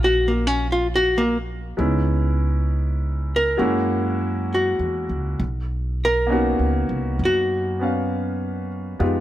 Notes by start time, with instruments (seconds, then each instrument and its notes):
Already playing: upright bass A#1, upright piano F#3 A#3 C#4 D#4 F4
0.04 hollow-body jazz guitar F#4
0.28 hollow-body jazz guitar A#3
0.47 hollow-body jazz guitar C#4
0.72 hollow-body jazz guitar F4
0.96 hollow-body jazz guitar F#4
1.18 hollow-body jazz guitar A#3
1.77 upright bass C#2, upright piano G#3 B3 C#4 D#4 E4
3.36 hollow-body jazz guitar A#4
3.57 upright bass F#2, upright piano G#3 A#3 C#4 E4 F#4
4.54 hollow-body jazz guitar F#4
4.79 upright bass E2
5.09 upright bass C#2
5.40 upright bass B1
6.05 hollow-body jazz guitar A#4
6.27 upright piano A#3 B3 C#4 D#4
6.32 upright piano F#4
6.59 upright bass C#2
6.89 upright bass C2
7.19 upright bass F#2
7.25 hollow-body jazz guitar F#4
7.79 upright piano B3 C#4 F5
8.99 upright bass F2, upright piano G#3 B3 D#4 F4 G4